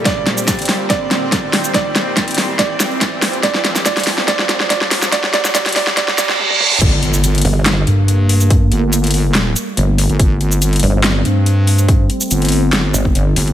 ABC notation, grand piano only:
X:1
M:4/4
L:1/8
Q:1/4=142
K:Gm
V:1 name="Grand piano"
d4 d4 | d4 d4 | d2 d2 d2 d2 | d d d d d d z2 |
z8 | z8 | z8 | z8 |]